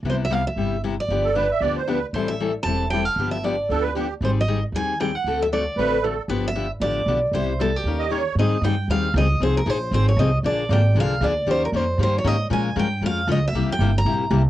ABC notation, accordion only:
X:1
M:4/4
L:1/16
Q:"Swing" 1/4=232
K:C
V:1 name="Accordion"
z16 | z2 A2 B2 e2 d2 c2 B3 z | z16 | z8 A2 B2 G3 z |
z16 | z8 B4 A3 z | z16 | z8 z2 _e2 _d4 |
[K:Ab] z16 | z16 | z16 | z16 |
z16 | z16 |]